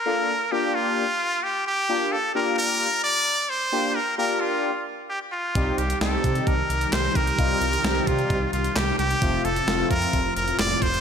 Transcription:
<<
  \new Staff \with { instrumentName = "Muted trumpet" } { \time 4/4 \key g \minor \tempo 4 = 131 bes'4 g'8 f'4. g'8 g'8~ | g'8 a'8 bes'8 bes'4 d''4 c''8~ | c''8 bes'8 bes'8 f'4 r8 g'8 f'8~ | f'8 g'8 a'4 bes'4 c''8 bes'8~ |
bes'4. f'4 f'8 g'8 g'8~ | g'8 a'4 bes'4 bes'8 d''8 c''8 | }
  \new Staff \with { instrumentName = "Analog polysynth" } { \time 4/4 \key g \minor <bes d' f' a'>8 r8 <bes d' f' g'>4 r2 | <bes d' f' g'>8 r8 <bes d' f' g'>4 r2 | <bes d' f' g'>8 r8 <bes d' f' g'>4 r2 | <g c' ees' g'>8 r8 <g c' ees' g'>4 r2 |
<g c' ees' f'>8 r8 <g c' ees' g'>4 r2 | <f a c' f'>8 r8 <f a c' f'>4 r2 | }
  \new Staff \with { instrumentName = "String machine" } { \clef bass \time 4/4 \key g \minor r1 | r1 | r1 | <c ees g ees' g'>1~ |
<c ees g ees' g'>1 | <a, f c' f'>1 | }
  \new Staff \with { instrumentName = "Analog synth bass" } { \clef bass \time 4/4 \key g \minor r1 | r1 | r1 | c,8 c,8 c,8 c8 c,8 c,8 c,8 c,8 |
c,8 c,8 c,8 c8 c,8 c,8 c,8 c,8 | f,,8 f,,8 f,,8 f,8 f,,8 f,,8 f,,8 f,,8 | }
  \new DrumStaff \with { instrumentName = "Drums" } \drummode { \time 4/4 r4 r4 r4 r4 | r4 r4 r4 r4 | r4 r4 r4 r4 | <hh bd>8 hh16 hh16 <hh sn>8 <hh bd>16 hh16 <hh bd>8 hh16 hh16 <hc hh sn>8 <hh bd>16 hh16 |
<hh bd>8 hh16 hh16 <hh sn>8 <hh bd>16 hh16 <hh bd>8 hh16 hh16 <hc hh sn>8 hh16 hh16 | <hh bd>8 hh16 hh16 <hh sn>8 <hh bd>16 hh16 <hh bd>8 hh16 hh16 <hc hh sn>8 <hh bd>16 hh16 | }
>>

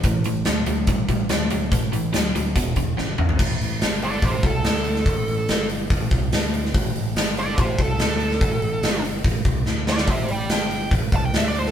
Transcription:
<<
  \new Staff \with { instrumentName = "Lead electric guitar" } { \time 4/4 \key a \minor \tempo 4 = 144 r1 | r1 | r4. <a' d''>8 <g' c''>8 a'4.~ | a'4. r2 r8 |
r4. <a' d''>8 <g' c''>8 a'4.~ | a'4. r2 <a' d''>8 | <c'' e''>8 <d'' g''>8 g''4 r8 a''16 g''16 e''16 d''16 c''16 a'16 | }
  \new Staff \with { instrumentName = "Overdriven electric guitar" } { \clef bass \time 4/4 \key a \minor <a, e>8 <a, e>8 <a, fis>8 <a, fis>8 <a, g>8 <a, g>8 <a, fis>8 <a, fis>8 | <a, e>8 <a, e>8 <a, fis>8 <a, fis>8 <e, b,>8 <e, d>8 <e, cis>8 <e, cis>8 | r1 | r1 |
r1 | r1 | r1 | }
  \new Staff \with { instrumentName = "Fingered electric bass" } { \clef bass \time 4/4 \key a \minor a,,8 a,,8 d,8 d,8 a,,8 a,,8 d,8 d,8 | a,,8 a,,8 d,8 d,8 e,,8 e,,8 gis,,8 gis,,8 | a,,8 a,,8 g,,4 a,,8 c,8 d,4 | a,,8 a,,8 g,,4 a,,8 c,8 d,4 |
a,,8 a,,8 g,,4 a,,8 c,8 d,4 | a,,8 a,,8 g,,4 a,,8 c,8 d,4 | a,,8 a,,8 g,,4 a,,8 c,8 d,4 | }
  \new DrumStaff \with { instrumentName = "Drums" } \drummode { \time 4/4 <hh bd>8 hh8 <hh sn>8 hh8 <hh bd>8 <hh bd>8 <hh sn>8 hh8 | <hh bd>8 hh8 <hh sn>8 hh8 <hh bd>8 <hh bd>8 sn8 toml16 tomfh16 | <cymc bd>8 hho8 <hho sn>8 hho8 <hho bd>8 <hho bd>8 <hho sn>16 sn16 hho16 sn16 | <hho bd>8 hho8 <hho sn>8 hho8 <hho bd>8 <hho bd>8 <hho sn>8 hho16 sn16 |
<hho bd>8 hho8 <hho sn>8 hho8 <hho bd>8 <hho bd>8 <hho sn>8 hho16 sn16 | <hho bd>8 hho8 <hho sn>8 hho8 <hho bd>8 <hho bd>8 sn8 sn16 sn16 | <hho bd>8 hho8 <hho sn>8 hho8 <hho bd>8 <hho bd>8 <hho sn>16 sn16 hho16 sn16 | }
>>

